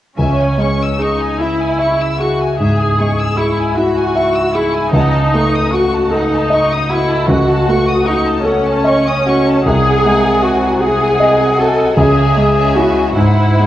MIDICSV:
0, 0, Header, 1, 5, 480
1, 0, Start_track
1, 0, Key_signature, 4, "minor"
1, 0, Tempo, 804290
1, 105, Time_signature, 12, 3, 24, 8
1, 1543, Tempo, 782269
1, 4903, Tempo, 806452
1, 5863, Tempo, 768246
1, 7303, Tempo, 805369
1, 8308, End_track
2, 0, Start_track
2, 0, Title_t, "Violin section"
2, 0, Program_c, 0, 48
2, 107, Note_on_c, 0, 80, 28
2, 108, Note_on_c, 0, 76, 27
2, 220, Note_off_c, 0, 76, 0
2, 229, Note_off_c, 0, 80, 0
2, 236, Note_on_c, 0, 80, 28
2, 354, Note_off_c, 0, 80, 0
2, 360, Note_on_c, 0, 85, 34
2, 476, Note_off_c, 0, 85, 0
2, 489, Note_on_c, 0, 88, 27
2, 601, Note_off_c, 0, 88, 0
2, 603, Note_on_c, 0, 85, 30
2, 718, Note_off_c, 0, 85, 0
2, 719, Note_on_c, 0, 80, 28
2, 835, Note_off_c, 0, 80, 0
2, 835, Note_on_c, 0, 76, 33
2, 952, Note_off_c, 0, 76, 0
2, 956, Note_on_c, 0, 80, 29
2, 1071, Note_off_c, 0, 80, 0
2, 1074, Note_on_c, 0, 85, 26
2, 1189, Note_off_c, 0, 85, 0
2, 1196, Note_on_c, 0, 88, 25
2, 1309, Note_on_c, 0, 85, 28
2, 1310, Note_off_c, 0, 88, 0
2, 1426, Note_off_c, 0, 85, 0
2, 1432, Note_on_c, 0, 80, 26
2, 1547, Note_off_c, 0, 80, 0
2, 1547, Note_on_c, 0, 76, 35
2, 1658, Note_off_c, 0, 76, 0
2, 1665, Note_on_c, 0, 80, 31
2, 1784, Note_off_c, 0, 80, 0
2, 1790, Note_on_c, 0, 85, 27
2, 1906, Note_off_c, 0, 85, 0
2, 1917, Note_on_c, 0, 88, 28
2, 2029, Note_off_c, 0, 88, 0
2, 2029, Note_on_c, 0, 85, 30
2, 2145, Note_off_c, 0, 85, 0
2, 2152, Note_on_c, 0, 80, 30
2, 2267, Note_off_c, 0, 80, 0
2, 2267, Note_on_c, 0, 76, 31
2, 2384, Note_off_c, 0, 76, 0
2, 2392, Note_on_c, 0, 80, 31
2, 2504, Note_on_c, 0, 85, 32
2, 2506, Note_off_c, 0, 80, 0
2, 2617, Note_on_c, 0, 88, 32
2, 2622, Note_off_c, 0, 85, 0
2, 2738, Note_off_c, 0, 88, 0
2, 2748, Note_on_c, 0, 85, 30
2, 2856, Note_on_c, 0, 80, 36
2, 2864, Note_off_c, 0, 85, 0
2, 2979, Note_off_c, 0, 80, 0
2, 2986, Note_on_c, 0, 78, 34
2, 2987, Note_on_c, 0, 81, 33
2, 3097, Note_off_c, 0, 78, 0
2, 3101, Note_off_c, 0, 81, 0
2, 3109, Note_on_c, 0, 81, 30
2, 3228, Note_off_c, 0, 81, 0
2, 3238, Note_on_c, 0, 85, 36
2, 3353, Note_off_c, 0, 85, 0
2, 3357, Note_on_c, 0, 87, 30
2, 3474, Note_off_c, 0, 87, 0
2, 3482, Note_on_c, 0, 85, 34
2, 3596, Note_off_c, 0, 85, 0
2, 3603, Note_on_c, 0, 81, 32
2, 3716, Note_off_c, 0, 81, 0
2, 3735, Note_on_c, 0, 78, 40
2, 3841, Note_off_c, 0, 78, 0
2, 3849, Note_on_c, 0, 81, 33
2, 3957, Note_off_c, 0, 81, 0
2, 3966, Note_on_c, 0, 85, 35
2, 4075, Note_off_c, 0, 85, 0
2, 4080, Note_on_c, 0, 87, 33
2, 4192, Note_off_c, 0, 87, 0
2, 4193, Note_on_c, 0, 85, 31
2, 4309, Note_off_c, 0, 85, 0
2, 4315, Note_on_c, 0, 81, 35
2, 4431, Note_off_c, 0, 81, 0
2, 4435, Note_on_c, 0, 78, 40
2, 4542, Note_off_c, 0, 78, 0
2, 4550, Note_on_c, 0, 81, 39
2, 4667, Note_off_c, 0, 81, 0
2, 4674, Note_on_c, 0, 85, 35
2, 4788, Note_off_c, 0, 85, 0
2, 4790, Note_on_c, 0, 87, 31
2, 4902, Note_on_c, 0, 85, 37
2, 4905, Note_off_c, 0, 87, 0
2, 5016, Note_off_c, 0, 85, 0
2, 5026, Note_on_c, 0, 81, 34
2, 5132, Note_on_c, 0, 78, 36
2, 5137, Note_off_c, 0, 81, 0
2, 5250, Note_off_c, 0, 78, 0
2, 5260, Note_on_c, 0, 81, 38
2, 5376, Note_off_c, 0, 81, 0
2, 5379, Note_on_c, 0, 85, 38
2, 5498, Note_off_c, 0, 85, 0
2, 5500, Note_on_c, 0, 87, 36
2, 5619, Note_on_c, 0, 85, 36
2, 5621, Note_off_c, 0, 87, 0
2, 5739, Note_on_c, 0, 81, 38
2, 5742, Note_off_c, 0, 85, 0
2, 5860, Note_off_c, 0, 81, 0
2, 5861, Note_on_c, 0, 80, 44
2, 5862, Note_on_c, 0, 78, 43
2, 6554, Note_off_c, 0, 80, 0
2, 6555, Note_off_c, 0, 78, 0
2, 6585, Note_on_c, 0, 78, 41
2, 6586, Note_on_c, 0, 80, 44
2, 7290, Note_off_c, 0, 78, 0
2, 7291, Note_off_c, 0, 80, 0
2, 7303, Note_on_c, 0, 76, 43
2, 7305, Note_on_c, 0, 80, 46
2, 8002, Note_off_c, 0, 80, 0
2, 8015, Note_off_c, 0, 76, 0
2, 8020, Note_on_c, 0, 78, 40
2, 8021, Note_on_c, 0, 72, 36
2, 8308, Note_off_c, 0, 72, 0
2, 8308, Note_off_c, 0, 78, 0
2, 8308, End_track
3, 0, Start_track
3, 0, Title_t, "Grand piano"
3, 0, Program_c, 1, 0
3, 114, Note_on_c, 1, 37, 32
3, 215, Control_c, 1, 64, 127
3, 345, Note_on_c, 1, 56, 27
3, 587, Note_on_c, 1, 68, 29
3, 735, Note_off_c, 1, 56, 0
3, 833, Note_on_c, 1, 64, 28
3, 972, Note_off_c, 1, 68, 0
3, 1067, Note_on_c, 1, 76, 34
3, 1211, Note_off_c, 1, 64, 0
3, 1307, Note_on_c, 1, 68, 32
3, 1447, Note_off_c, 1, 76, 0
3, 1523, Note_off_c, 1, 37, 0
3, 1553, Note_on_c, 1, 44, 27
3, 1689, Note_off_c, 1, 68, 0
3, 1796, Note_on_c, 1, 56, 29
3, 1932, Note_off_c, 1, 44, 0
3, 2028, Note_on_c, 1, 68, 30
3, 2173, Note_off_c, 1, 56, 0
3, 2270, Note_on_c, 1, 64, 33
3, 2408, Note_off_c, 1, 68, 0
3, 2506, Note_on_c, 1, 76, 34
3, 2648, Note_off_c, 1, 64, 0
3, 2744, Note_on_c, 1, 68, 36
3, 2887, Note_off_c, 1, 76, 0
3, 2983, Note_off_c, 1, 68, 0
3, 2983, Note_on_c, 1, 37, 36
3, 2992, Control_c, 1, 64, 0
3, 3080, Control_c, 1, 64, 127
3, 3234, Note_on_c, 1, 57, 32
3, 3465, Note_on_c, 1, 66, 34
3, 3618, Note_off_c, 1, 57, 0
3, 3702, Note_on_c, 1, 69, 38
3, 3850, Note_off_c, 1, 66, 0
3, 3945, Note_on_c, 1, 75, 41
3, 4086, Note_off_c, 1, 69, 0
3, 4188, Note_on_c, 1, 66, 34
3, 4328, Note_off_c, 1, 75, 0
3, 4402, Note_off_c, 1, 37, 0
3, 4425, Note_on_c, 1, 37, 39
3, 4571, Note_off_c, 1, 66, 0
3, 4670, Note_on_c, 1, 57, 33
3, 4899, Note_on_c, 1, 66, 38
3, 5042, Note_off_c, 1, 57, 0
3, 5127, Note_on_c, 1, 69, 40
3, 5274, Note_off_c, 1, 66, 0
3, 5369, Note_on_c, 1, 75, 40
3, 5517, Note_off_c, 1, 69, 0
3, 5619, Note_on_c, 1, 66, 41
3, 5764, Note_off_c, 1, 75, 0
3, 5837, Note_off_c, 1, 37, 0
3, 5854, Note_on_c, 1, 36, 50
3, 5861, Note_off_c, 1, 66, 0
3, 5874, Control_c, 1, 64, 0
3, 5990, Control_c, 1, 64, 127
3, 6097, Note_on_c, 1, 56, 33
3, 6329, Note_on_c, 1, 66, 35
3, 6481, Note_off_c, 1, 56, 0
3, 6578, Note_on_c, 1, 68, 36
3, 6716, Note_off_c, 1, 66, 0
3, 6816, Note_on_c, 1, 75, 44
3, 6961, Note_off_c, 1, 68, 0
3, 7054, Note_on_c, 1, 66, 42
3, 7203, Note_off_c, 1, 75, 0
3, 7273, Note_off_c, 1, 36, 0
3, 7299, Note_on_c, 1, 37, 43
3, 7300, Note_off_c, 1, 66, 0
3, 7312, Control_c, 1, 64, 0
3, 7410, Control_c, 1, 64, 127
3, 7537, Note_on_c, 1, 56, 31
3, 7770, Note_on_c, 1, 61, 33
3, 7775, Note_on_c, 1, 64, 34
3, 7917, Note_off_c, 1, 56, 0
3, 7989, Note_off_c, 1, 61, 0
3, 7991, Note_off_c, 1, 64, 0
3, 7992, Note_off_c, 1, 37, 0
3, 8011, Note_on_c, 1, 44, 40
3, 8025, Control_c, 1, 64, 0
3, 8138, Control_c, 1, 64, 127
3, 8265, Note_on_c, 1, 56, 27
3, 8308, Note_off_c, 1, 44, 0
3, 8308, Note_off_c, 1, 56, 0
3, 8308, End_track
4, 0, Start_track
4, 0, Title_t, "Viola section"
4, 0, Program_c, 2, 48
4, 106, Note_on_c, 2, 61, 41
4, 569, Note_off_c, 2, 61, 0
4, 590, Note_on_c, 2, 63, 39
4, 831, Note_off_c, 2, 63, 0
4, 838, Note_on_c, 2, 64, 42
4, 1308, Note_off_c, 2, 64, 0
4, 1310, Note_on_c, 2, 66, 42
4, 1540, Note_off_c, 2, 66, 0
4, 1545, Note_on_c, 2, 68, 45
4, 2015, Note_off_c, 2, 68, 0
4, 2019, Note_on_c, 2, 64, 43
4, 2258, Note_on_c, 2, 66, 47
4, 2260, Note_off_c, 2, 64, 0
4, 2738, Note_off_c, 2, 66, 0
4, 2738, Note_on_c, 2, 64, 42
4, 2975, Note_on_c, 2, 63, 53
4, 2980, Note_off_c, 2, 64, 0
4, 3456, Note_off_c, 2, 63, 0
4, 3460, Note_on_c, 2, 66, 42
4, 3705, Note_off_c, 2, 66, 0
4, 3709, Note_on_c, 2, 63, 47
4, 4183, Note_on_c, 2, 64, 52
4, 4185, Note_off_c, 2, 63, 0
4, 4425, Note_off_c, 2, 64, 0
4, 4430, Note_on_c, 2, 66, 58
4, 4901, Note_on_c, 2, 63, 46
4, 4903, Note_off_c, 2, 66, 0
4, 5130, Note_on_c, 2, 61, 57
4, 5132, Note_off_c, 2, 63, 0
4, 5845, Note_off_c, 2, 61, 0
4, 5855, Note_on_c, 2, 68, 62
4, 6329, Note_off_c, 2, 68, 0
4, 6341, Note_on_c, 2, 66, 49
4, 6576, Note_on_c, 2, 68, 56
4, 6579, Note_off_c, 2, 66, 0
4, 7056, Note_off_c, 2, 68, 0
4, 7061, Note_on_c, 2, 69, 55
4, 7304, Note_off_c, 2, 69, 0
4, 7304, Note_on_c, 2, 68, 58
4, 7766, Note_off_c, 2, 68, 0
4, 7771, Note_on_c, 2, 66, 47
4, 8008, Note_on_c, 2, 64, 49
4, 8013, Note_off_c, 2, 66, 0
4, 8308, Note_off_c, 2, 64, 0
4, 8308, End_track
5, 0, Start_track
5, 0, Title_t, "Cello section"
5, 0, Program_c, 3, 48
5, 108, Note_on_c, 3, 49, 42
5, 703, Note_off_c, 3, 49, 0
5, 1547, Note_on_c, 3, 44, 43
5, 2132, Note_off_c, 3, 44, 0
5, 2979, Note_on_c, 3, 49, 46
5, 3576, Note_off_c, 3, 49, 0
5, 4427, Note_on_c, 3, 49, 48
5, 5004, Note_off_c, 3, 49, 0
5, 5865, Note_on_c, 3, 48, 43
5, 7279, Note_off_c, 3, 48, 0
5, 7309, Note_on_c, 3, 49, 44
5, 8004, Note_off_c, 3, 49, 0
5, 8020, Note_on_c, 3, 44, 36
5, 8308, Note_off_c, 3, 44, 0
5, 8308, End_track
0, 0, End_of_file